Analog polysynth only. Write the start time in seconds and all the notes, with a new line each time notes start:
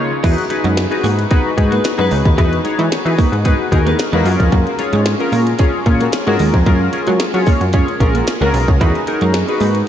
Already playing: C#3 D#4 F4 G#4 C#5
0.23 D#4 F#4 G#4 B4
0.50 D#4 F#4 G#4 B4
0.91 D#4 F#4 G#4 B4
1.30 D#4 F#4 G#4 B4
1.57 D#4 F#4 G#4 B4
1.98 D#4 F#4 G#4 B4
2.37 D#4 F#4 G#4 B4
2.64 D#4 F#4 G#4 C#5
3.05 D#4 F#4 G#4 B4
3.44 D#4 F#4 G#4 B4
3.71 D#4 F#4 G#4 A#4
4.13 D#4 F#4 G#4 B4
4.25 C#4 F4 G#4 A#4
4.79 C#4 F4 G#4 C#5
5.19 C#4 F4 G#4 A#4
5.59 C#4 F4 G#4 C#5
5.86 C#4 F4 G#4 C#5
6.27 C#4 F4 G#4 A#4
6.66 C#4 F4 G#4 A#4
6.93 C#4 F4 G#4 A#4
7.34 C#4 F4 G#4 C#5
7.73 C#4 F4 G#4 C#5
8.00 C#4 F4 G#4 A#4
8.41 C#4 F4 G#4 A#4
8.80 D#4 F#4 G#4 B4
9.07 D#4 F#4 G#4 A#4
9.48 D#4 F#4 G#4 B4